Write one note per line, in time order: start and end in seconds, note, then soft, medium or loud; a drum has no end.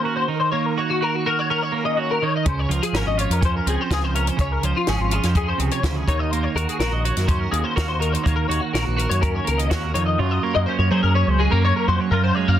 0.00 0.27 D#3 medium
0.00 0.25 A#3 medium
0.00 0.31 C#4 medium
0.00 0.15 A#4 medium
0.05 0.26 F#4 medium
0.16 0.28 C5 medium
0.28 2.21 D#3 medium
0.28 0.39 A#4 medium
0.40 0.51 C5 medium
0.52 1.71 A#3 medium
0.52 0.66 C#5 medium
0.66 0.78 A#4 medium
0.78 1.00 F#4 medium
0.78 0.89 C#5 medium
0.90 1.02 F#4 medium
1.01 1.25 F#4 medium
1.01 1.15 A#4 medium
1.15 1.26 F#4 medium
1.26 1.96 F#4 medium
1.26 1.39 A#4 medium
1.39 1.50 C#5 medium
1.50 2.25 C#4 medium
1.50 1.63 A#4 medium
1.63 1.74 C#5 medium
1.72 2.18 A#3 medium
1.72 1.85 A#4 medium
1.85 1.99 D#5 medium
1.97 2.18 F#4 medium
1.97 2.10 C#5 medium
2.11 2.22 A#4 medium
2.22 2.46 D#3 medium
2.22 2.34 C#5 medium
2.36 2.47 D#5 medium
2.46 2.65 C#2 medium
2.46 2.69 C#3 medium
2.46 2.59 C5 medium
2.46 kick loud
2.46 closed hi-hat medium
2.59 2.71 C#5 medium
2.69 2.79 C#2 medium
2.69 3.89 F3 medium
2.69 2.82 A#4 medium
2.69 closed hi-hat medium
2.83 2.94 G#4 medium
2.83 closed hi-hat medium
2.93 3.03 G#1 medium
2.93 3.40 C#4 medium
2.93 3.07 A#4 medium
2.93 snare medium
2.93 closed hi-hat medium
3.06 3.25 G#1 medium
3.06 3.18 D#5 medium
3.18 5.11 F4 medium
3.18 3.32 C#5 medium
3.18 closed hi-hat medium
3.30 3.59 F2 medium
3.30 3.43 A#4 medium
3.30 closed hi-hat medium
3.41 4.16 C#4 medium
3.41 kick loud
3.41 closed hi-hat medium
3.45 3.55 C5 medium
3.56 3.67 A#4 medium
3.66 3.76 C#2 medium
3.66 4.36 C4 soft
3.66 3.81 G#4 medium
3.66 closed hi-hat medium
3.81 3.91 C5 medium
3.90 4.29 C#2 medium
3.90 4.36 F3 medium
3.90 4.04 G#4 medium
3.90 kick medium
3.90 snare medium
3.90 closed hi-hat medium
4.04 4.15 C5 medium
4.15 4.88 C#4 medium
4.15 4.28 A#4 medium
4.15 closed hi-hat medium
4.27 4.39 C5 medium
4.27 closed hi-hat medium
4.37 4.58 C#2 medium
4.37 4.62 C#3 medium
4.37 4.52 C#5 medium
4.37 kick loud
4.37 closed hi-hat medium
4.52 4.64 A#4 medium
4.63 4.72 C#2 medium
4.63 6.05 F3 medium
4.63 4.75 C5 medium
4.63 closed hi-hat medium
4.76 4.87 F4 medium
4.87 4.97 G#1 medium
4.87 5.35 C#4 medium
4.87 5.01 G#4 medium
4.87 snare medium
4.87 closed hi-hat medium
4.99 5.18 G#1 medium
4.99 5.13 F4 medium
5.11 6.08 F4 medium
5.11 5.24 G#4 medium
5.11 closed hi-hat medium
5.23 5.52 F2 medium
5.23 5.36 C5 medium
5.23 snare soft
5.23 closed hi-hat medium
5.35 6.11 C#4 medium
5.35 5.48 G#4 medium
5.35 kick medium
5.35 closed hi-hat medium
5.48 5.59 C5 medium
5.58 5.69 C#2 medium
5.58 5.83 C3 medium
5.58 5.71 G#4 medium
5.58 closed hi-hat medium
5.71 5.84 C#5 medium
5.71 closed hi-hat medium
5.83 6.02 D2 medium
5.83 6.07 C#3 medium
5.83 5.96 C5 medium
5.83 kick medium
5.83 snare loud
5.83 closed hi-hat medium
5.96 6.08 G#4 medium
6.08 6.46 D#2 medium
6.08 7.98 D#3 medium
6.08 6.19 C#5 medium
6.08 kick medium
6.08 closed hi-hat medium
6.19 6.30 D#5 medium
6.30 7.51 A#3 medium
6.30 6.43 C5 medium
6.30 closed hi-hat soft
6.43 6.55 C#5 medium
6.55 6.65 D#2 medium
6.55 6.82 F#4 medium
6.55 6.68 A#4 medium
6.55 closed hi-hat medium
6.69 6.79 G#4 medium
6.69 closed hi-hat medium
6.79 6.89 A#1 medium
6.79 7.05 F#4 medium
6.79 6.92 A#4 medium
6.79 snare medium
6.79 closed hi-hat medium
6.91 7.11 A#1 medium
6.91 7.04 D#5 medium
7.04 7.76 F#4 medium
7.04 7.16 C#5 medium
7.04 closed hi-hat medium
7.16 7.45 F#2 medium
7.16 7.27 A#4 medium
7.16 snare soft
7.16 closed hi-hat medium
7.27 8.03 C#4 medium
7.27 7.39 C5 medium
7.27 kick loud
7.27 closed hi-hat soft
7.39 7.51 A#4 medium
7.51 7.62 D#2 medium
7.51 8.23 A#3 medium
7.51 7.64 G#4 medium
7.51 closed hi-hat medium
7.64 7.76 C5 medium
7.76 8.15 D#2 medium
7.76 8.49 F#4 medium
7.76 7.88 A#4 medium
7.76 kick medium
7.76 snare loud
7.76 closed hi-hat medium
7.88 8.00 C5 medium
8.00 9.93 D#3 medium
8.00 8.12 A#4 medium
8.00 closed hi-hat medium
8.12 8.23 C5 medium
8.12 closed hi-hat medium
8.23 8.45 D#2 medium
8.23 9.43 A#3 medium
8.23 8.35 C#5 medium
8.23 kick loud
8.23 closed hi-hat medium
8.36 8.48 A#4 medium
8.48 8.59 D#2 medium
8.48 8.73 F#4 medium
8.48 8.61 C#5 medium
8.48 closed hi-hat medium
8.60 8.73 F#4 medium
8.73 8.83 A#1 medium
8.73 8.95 F#4 medium
8.73 8.85 A#4 medium
8.73 snare medium
8.73 closed hi-hat medium
8.85 9.06 A#1 medium
8.85 8.98 F#4 medium
8.97 9.69 F#4 medium
8.97 9.10 A#4 medium
8.97 closed hi-hat medium
9.09 9.39 F#2 medium
9.09 9.22 C#5 medium
9.09 closed hi-hat medium
9.21 9.91 C#4 medium
9.21 9.34 A#4 medium
9.21 kick medium
9.21 closed hi-hat medium
9.35 9.47 C#5 medium
9.45 9.69 C#2 medium
9.45 9.91 A#3 medium
9.45 9.59 A#4 medium
9.45 closed hi-hat medium
9.58 9.70 D#5 medium
9.58 closed hi-hat medium
9.70 9.92 D#2 medium
9.70 9.91 F#4 medium
9.70 9.83 C#5 medium
9.70 kick medium
9.70 snare loud
9.70 closed hi-hat medium
9.83 9.94 A#4 medium
9.94 10.16 F2 medium
9.94 10.18 D#3 medium
9.94 10.05 C#5 medium
9.94 closed hi-hat medium
10.06 10.19 D#5 medium
10.19 12.09 F#2 medium
10.19 10.38 F#2 medium
10.19 10.91 F4 medium
10.19 10.31 C#5 medium
10.31 10.43 D#5 medium
10.43 11.38 A#3 medium
10.43 10.54 C#5 medium
10.55 10.65 F#2 medium
10.55 10.66 D#5 medium
10.66 11.14 C#4 medium
10.66 10.78 C5 medium
10.79 10.88 F#2 medium
10.79 10.90 C#5 medium
10.91 11.01 F#3 medium
10.91 12.09 G#4 medium
10.91 11.02 C5 medium
11.03 11.22 F#2 medium
11.03 11.15 A#4 medium
11.15 11.65 C#4 medium
11.15 11.28 C#5 medium
11.27 11.46 C#2 medium
11.27 11.40 C5 medium
11.39 11.52 G#3 medium
11.39 11.51 G#4 medium
11.51 11.71 F#2 medium
11.51 12.12 A#3 soft
11.51 11.63 A#4 medium
11.65 12.58 C#4 medium
11.65 11.76 C#5 medium
11.76 11.88 A#4 medium
11.88 11.97 F2 medium
11.88 12.09 F#3 medium
11.88 12.00 C5 medium
12.00 12.11 C#5 medium
12.11 12.30 F#2 loud
12.11 12.59 F#2 medium
12.11 12.59 F4 medium
12.11 12.23 A#4 medium
12.24 12.35 C5 medium
12.35 12.48 G#3 medium
12.35 12.48 C#5 medium
12.48 12.58 F#2 medium
12.48 12.59 A#3 soft
12.48 12.59 F5 medium